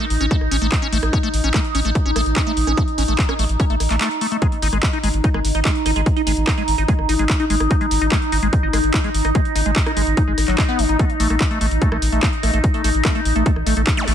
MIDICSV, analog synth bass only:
0, 0, Header, 1, 2, 480
1, 0, Start_track
1, 0, Tempo, 410959
1, 1321, Time_signature, 4, 2, 24, 8
1, 16521, End_track
2, 0, Start_track
2, 0, Title_t, "Analog synth bass"
2, 0, Program_c, 0, 38
2, 121, Note_on_c, 0, 33, 98
2, 199, Note_off_c, 0, 33, 0
2, 241, Note_on_c, 0, 33, 80
2, 319, Note_off_c, 0, 33, 0
2, 481, Note_on_c, 0, 33, 76
2, 559, Note_off_c, 0, 33, 0
2, 601, Note_on_c, 0, 33, 94
2, 679, Note_off_c, 0, 33, 0
2, 721, Note_on_c, 0, 33, 81
2, 799, Note_off_c, 0, 33, 0
2, 1081, Note_on_c, 0, 33, 96
2, 1159, Note_off_c, 0, 33, 0
2, 1201, Note_on_c, 0, 33, 82
2, 1279, Note_off_c, 0, 33, 0
2, 1561, Note_on_c, 0, 33, 96
2, 1639, Note_off_c, 0, 33, 0
2, 1681, Note_on_c, 0, 33, 87
2, 1759, Note_off_c, 0, 33, 0
2, 2040, Note_on_c, 0, 33, 100
2, 2119, Note_off_c, 0, 33, 0
2, 2161, Note_on_c, 0, 33, 81
2, 2239, Note_off_c, 0, 33, 0
2, 2401, Note_on_c, 0, 33, 76
2, 2479, Note_off_c, 0, 33, 0
2, 2521, Note_on_c, 0, 33, 94
2, 2598, Note_off_c, 0, 33, 0
2, 2641, Note_on_c, 0, 33, 79
2, 2719, Note_off_c, 0, 33, 0
2, 3001, Note_on_c, 0, 33, 95
2, 3079, Note_off_c, 0, 33, 0
2, 3121, Note_on_c, 0, 33, 78
2, 3199, Note_off_c, 0, 33, 0
2, 3481, Note_on_c, 0, 33, 93
2, 3559, Note_off_c, 0, 33, 0
2, 3601, Note_on_c, 0, 33, 81
2, 3679, Note_off_c, 0, 33, 0
2, 3961, Note_on_c, 0, 33, 98
2, 4039, Note_off_c, 0, 33, 0
2, 4081, Note_on_c, 0, 33, 81
2, 4159, Note_off_c, 0, 33, 0
2, 4321, Note_on_c, 0, 33, 76
2, 4399, Note_off_c, 0, 33, 0
2, 4441, Note_on_c, 0, 33, 94
2, 4519, Note_off_c, 0, 33, 0
2, 4561, Note_on_c, 0, 33, 81
2, 4639, Note_off_c, 0, 33, 0
2, 5401, Note_on_c, 0, 32, 92
2, 5479, Note_off_c, 0, 32, 0
2, 5521, Note_on_c, 0, 32, 87
2, 5598, Note_off_c, 0, 32, 0
2, 5880, Note_on_c, 0, 32, 98
2, 5958, Note_off_c, 0, 32, 0
2, 6001, Note_on_c, 0, 32, 81
2, 6079, Note_off_c, 0, 32, 0
2, 6240, Note_on_c, 0, 32, 72
2, 6318, Note_off_c, 0, 32, 0
2, 6360, Note_on_c, 0, 32, 98
2, 6438, Note_off_c, 0, 32, 0
2, 6480, Note_on_c, 0, 32, 85
2, 6558, Note_off_c, 0, 32, 0
2, 6840, Note_on_c, 0, 32, 94
2, 6918, Note_off_c, 0, 32, 0
2, 6960, Note_on_c, 0, 32, 80
2, 7038, Note_off_c, 0, 32, 0
2, 7321, Note_on_c, 0, 32, 97
2, 7399, Note_off_c, 0, 32, 0
2, 7441, Note_on_c, 0, 32, 83
2, 7519, Note_off_c, 0, 32, 0
2, 7800, Note_on_c, 0, 32, 96
2, 7879, Note_off_c, 0, 32, 0
2, 7921, Note_on_c, 0, 32, 76
2, 7998, Note_off_c, 0, 32, 0
2, 8161, Note_on_c, 0, 32, 74
2, 8239, Note_off_c, 0, 32, 0
2, 8281, Note_on_c, 0, 32, 96
2, 8359, Note_off_c, 0, 32, 0
2, 8400, Note_on_c, 0, 32, 81
2, 8478, Note_off_c, 0, 32, 0
2, 8760, Note_on_c, 0, 32, 93
2, 8838, Note_off_c, 0, 32, 0
2, 8881, Note_on_c, 0, 32, 81
2, 8959, Note_off_c, 0, 32, 0
2, 9241, Note_on_c, 0, 32, 93
2, 9319, Note_off_c, 0, 32, 0
2, 9361, Note_on_c, 0, 32, 87
2, 9439, Note_off_c, 0, 32, 0
2, 9721, Note_on_c, 0, 32, 99
2, 9799, Note_off_c, 0, 32, 0
2, 9841, Note_on_c, 0, 32, 81
2, 9919, Note_off_c, 0, 32, 0
2, 10081, Note_on_c, 0, 32, 74
2, 10159, Note_off_c, 0, 32, 0
2, 10201, Note_on_c, 0, 32, 95
2, 10279, Note_off_c, 0, 32, 0
2, 10321, Note_on_c, 0, 32, 79
2, 10399, Note_off_c, 0, 32, 0
2, 10681, Note_on_c, 0, 32, 99
2, 10759, Note_off_c, 0, 32, 0
2, 10801, Note_on_c, 0, 32, 81
2, 10879, Note_off_c, 0, 32, 0
2, 11161, Note_on_c, 0, 32, 92
2, 11239, Note_off_c, 0, 32, 0
2, 11281, Note_on_c, 0, 32, 83
2, 11359, Note_off_c, 0, 32, 0
2, 11641, Note_on_c, 0, 32, 98
2, 11719, Note_off_c, 0, 32, 0
2, 11761, Note_on_c, 0, 32, 77
2, 11839, Note_off_c, 0, 32, 0
2, 12001, Note_on_c, 0, 32, 73
2, 12079, Note_off_c, 0, 32, 0
2, 12121, Note_on_c, 0, 32, 93
2, 12199, Note_off_c, 0, 32, 0
2, 12241, Note_on_c, 0, 32, 81
2, 12319, Note_off_c, 0, 32, 0
2, 12601, Note_on_c, 0, 32, 98
2, 12679, Note_off_c, 0, 32, 0
2, 12721, Note_on_c, 0, 32, 79
2, 12799, Note_off_c, 0, 32, 0
2, 13081, Note_on_c, 0, 33, 99
2, 13159, Note_off_c, 0, 33, 0
2, 13201, Note_on_c, 0, 33, 87
2, 13279, Note_off_c, 0, 33, 0
2, 13561, Note_on_c, 0, 33, 99
2, 13639, Note_off_c, 0, 33, 0
2, 13681, Note_on_c, 0, 33, 79
2, 13759, Note_off_c, 0, 33, 0
2, 13921, Note_on_c, 0, 33, 71
2, 13999, Note_off_c, 0, 33, 0
2, 14041, Note_on_c, 0, 33, 94
2, 14119, Note_off_c, 0, 33, 0
2, 14160, Note_on_c, 0, 33, 80
2, 14239, Note_off_c, 0, 33, 0
2, 14521, Note_on_c, 0, 33, 96
2, 14599, Note_off_c, 0, 33, 0
2, 14641, Note_on_c, 0, 33, 81
2, 14719, Note_off_c, 0, 33, 0
2, 15001, Note_on_c, 0, 33, 96
2, 15079, Note_off_c, 0, 33, 0
2, 15121, Note_on_c, 0, 33, 87
2, 15199, Note_off_c, 0, 33, 0
2, 15481, Note_on_c, 0, 33, 94
2, 15559, Note_off_c, 0, 33, 0
2, 15601, Note_on_c, 0, 33, 81
2, 15679, Note_off_c, 0, 33, 0
2, 15841, Note_on_c, 0, 33, 77
2, 15919, Note_off_c, 0, 33, 0
2, 15961, Note_on_c, 0, 33, 94
2, 16039, Note_off_c, 0, 33, 0
2, 16081, Note_on_c, 0, 33, 79
2, 16159, Note_off_c, 0, 33, 0
2, 16441, Note_on_c, 0, 33, 94
2, 16519, Note_off_c, 0, 33, 0
2, 16521, End_track
0, 0, End_of_file